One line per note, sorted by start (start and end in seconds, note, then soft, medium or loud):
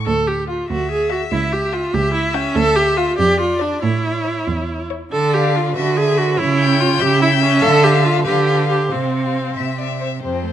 0.06 0.57 D2 medium
0.06 0.29 A4 medium
0.27 0.48 G4 medium
0.47 0.69 F4 medium
0.47 0.63 F5 medium
0.69 1.19 D2 medium
0.69 0.90 F#4 medium
0.69 1.90 E5 medium
0.91 1.11 G#4 medium
1.09 1.20 F#4 medium
1.09 1.26 E5 medium
1.32 1.81 C#2 medium
1.32 1.54 E4 medium
1.53 1.75 G4 medium
1.72 1.95 F4 medium
1.72 1.88 G5 medium
1.94 2.43 C#2 medium
1.94 2.13 G4 medium
1.94 3.15 E5 medium
2.14 2.36 E4 medium
2.34 2.57 C#4 medium
2.34 2.50 G5 medium
2.56 3.05 D2 medium
2.56 2.78 A4 loud
2.76 2.99 G4 loud
2.97 3.18 F4 medium
2.97 3.12 F5 medium
3.18 3.69 F2 medium
3.18 3.39 G4 loud
3.18 3.84 D5 medium
3.40 3.63 F4 medium
3.59 3.82 D4 medium
3.59 3.76 D5 medium
3.82 4.34 A2 medium
3.82 4.89 E4 medium
3.82 4.80 C#5 medium
4.25 4.41 C#5 medium
4.48 4.99 E2 medium
4.90 5.06 C#5 medium
5.12 5.69 D3 medium
5.12 5.35 A4 medium
5.12 5.72 D5 medium
5.33 5.57 G4 medium
5.33 5.75 F5 medium
5.56 5.76 F4 medium
5.75 6.32 D3 medium
5.75 5.99 F#4 medium
5.75 6.37 B4 medium
5.75 5.97 E5 medium
5.97 6.19 G#4 loud
5.97 6.39 E5 medium
6.18 6.41 F#4 loud
6.38 6.94 C#3 medium
6.38 6.82 E4 loud
6.38 7.02 C#5 medium
6.59 7.20 G5 medium
6.81 7.03 F4 loud
7.00 7.56 C#3 medium
7.00 7.21 G4 loud
7.00 8.24 E5 loud
7.22 7.30 E4 loud
7.22 7.62 G5 medium
7.43 7.64 C#4 loud
7.62 8.19 D3 medium
7.62 7.85 A4 loud
7.62 7.81 F5 medium
7.82 8.07 G4 loud
7.82 8.24 F5 medium
8.05 8.26 F4 medium
8.25 8.84 D3 medium
8.25 8.69 G4 medium
8.25 8.89 B4 medium
8.25 8.45 F5 medium
8.45 8.89 F5 soft
8.70 8.93 G4 medium
8.90 9.50 C3 medium
8.90 10.02 C4 medium
8.90 9.52 C5 soft
8.90 9.12 F5 soft
9.12 9.56 F5 soft
9.56 10.16 C3 soft
9.56 9.78 E5 soft
9.56 9.80 E5 medium
9.79 10.00 D5 soft
9.79 10.21 E5 soft
10.00 10.08 C5 soft
10.21 10.35 C3 soft
10.21 10.53 C4 medium
10.21 10.53 C5 soft
10.25 10.53 F2 medium
10.34 10.45 F3 soft
10.44 10.53 A3 soft